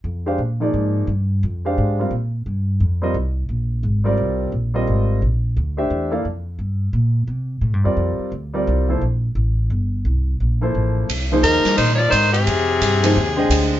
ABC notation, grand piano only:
X:1
M:4/4
L:1/8
Q:"Swing" 1/4=174
K:Fdor
V:1 name="Grand piano"
z [A,DGcf] z [F,B,EAd]3 z2 | z [A,DGcf]2 [G,CFBf] z4 | z [G,CFBe] z4 z [G,CFBd]- | [G,CFBd]2 z [G,CFBe]3 z2 |
z [=A,DGc=e]2 [B,=E=Adf] z4 | z4 z [G,CFBd]3 | z [G,CFBd]2 [F,B,=E=Ac] z4 | z4 z [F,B,=E=Ac]3 |
z [F,B,EAc]3 z4 | z3 [F,B,EAc] z [D,A,ceg]3 |]